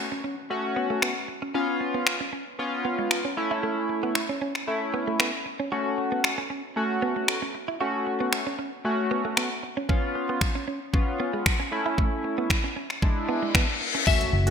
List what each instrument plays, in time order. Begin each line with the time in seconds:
Already playing: downlifter
0.12 clean electric guitar C#4
0.24 clean electric guitar C#4
0.50 analog polysynth A3 C#4 F#4, muted clean electric guitar stroke
0.76 clean electric guitar B3
0.90 clean electric guitar A3
1.02 clean electric guitar B3, finger snap
1.28 muted clean electric guitar stroke
1.42 clean electric guitar C#4
1.54 analog polysynth B3 C#4 F4, clean electric guitar C#4
1.81 muted clean electric guitar stroke
1.94 clean electric guitar B3
2.07 finger snap, muted clean electric guitar stroke
2.21 clean electric guitar C#4
2.33 clean electric guitar C#4
2.59 analog polysynth B3 C#4 F4, muted clean electric guitar stroke
2.85 clean electric guitar B3
2.99 clean electric guitar G#3
3.11 finger snap
3.25 clean electric guitar C#4
3.37 analog polysynth A3 C#4 E4, muted clean electric guitar stroke
3.51 clean electric guitar E4
3.63 clean electric guitar A3
3.89 muted clean electric guitar stroke
4.03 clean electric guitar B3
4.15 finger snap, muted clean electric guitar stroke
4.29 clean electric guitar C#4
4.42 clean electric guitar C#4
4.55 finger snap
4.67 analog polysynth A3 C#4 E4, muted clean electric guitar stroke
4.94 clean electric guitar B3
5.07 clean electric guitar A3
5.20 clean electric guitar B3, finger snap
5.46 muted clean electric guitar stroke
5.60 clean electric guitar C#4
5.72 analog polysynth A3 C#4 F#4, clean electric guitar F#4
5.98 muted clean electric guitar stroke
6.12 clean electric guitar B3
6.24 finger snap, muted clean electric guitar stroke
6.38 clean electric guitar C#4
6.50 clean electric guitar C#4
6.76 analog polysynth A3 C#4 F#4, muted clean electric guitar stroke
7.02 clean electric guitar B3
7.16 clean electric guitar A3
7.28 finger snap
7.42 clean electric guitar C#4
7.55 muted clean electric guitar stroke
7.68 clean electric guitar E4
7.80 analog polysynth A3 C#4 F#4, clean electric guitar F#4
8.07 muted clean electric guitar stroke
8.20 clean electric guitar B3
8.33 finger snap, muted clean electric guitar stroke
8.47 clean electric guitar C#4
8.59 clean electric guitar C#4
8.85 analog polysynth A3 C#4 F#4, muted clean electric guitar stroke
9.11 clean electric guitar B3
9.25 clean electric guitar A3
9.37 clean electric guitar B3, finger snap
9.63 muted clean electric guitar stroke
9.77 clean electric guitar C#4
9.89 analog polysynth B3 C#4 F4, clean electric guitar C#4, kick
10.15 muted clean electric guitar stroke
10.29 clean electric guitar B3
10.41 finger snap, muted clean electric guitar stroke, kick
10.55 clean electric guitar C#4
10.68 clean electric guitar C#4
10.93 analog polysynth B3 C#4 F4, muted clean electric guitar stroke, kick
11.20 clean electric guitar B3
11.33 clean electric guitar G#3
11.46 finger snap, kick
11.60 clean electric guitar C#4
11.71 analog polysynth A3 C#4 E4, muted clean electric guitar stroke
11.86 clean electric guitar E4
11.98 clean electric guitar A3, kick
12.24 muted clean electric guitar stroke
12.38 clean electric guitar B3
12.50 finger snap, muted clean electric guitar stroke, kick
12.64 clean electric guitar C#4
12.76 clean electric guitar C#4
12.90 finger snap
13.02 analog polysynth G#3 D4 E4, muted clean electric guitar stroke, kick, reverse cymbal
13.29 clean electric guitar B3
13.42 clean electric guitar G#3
13.55 clean electric guitar B3, finger snap, kick
13.81 muted clean electric guitar stroke
13.95 clean electric guitar C#4
14.07 analog synth pad C#3 A3 F#4, analog polysynth A3 C#4 F#4, synth pluck E5, kick, crash, impact
14.21 closed hi-hat
14.33 fingered electric bass F#1
14.46 analog polysynth A3 C#4 F#4, closed hi-hat